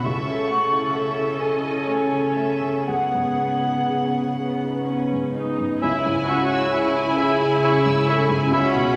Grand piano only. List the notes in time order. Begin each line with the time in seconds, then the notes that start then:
0.06 C#2
0.27 C#3
0.50 A3
0.73 E4
0.95 A4
1.18 E4
1.41 A4
1.64 E4
1.88 A3
2.12 C#3
2.36 A3
2.62 C#3
2.88 C#2
3.14 G#2
3.39 B3
3.65 D#4
3.90 G#4
4.15 B4
4.40 G#4
4.64 D#4
4.87 B3
5.13 G#2
5.36 B3
5.60 G#2
5.83 C#2
6.06 G#2
6.30 C#4
6.53 E4
6.76 G#4
6.98 E4
7.19 G#4
7.42 E4
7.63 C#4
7.86 G#2
8.08 C#4
8.29 G#2
8.51 C#2
8.74 B2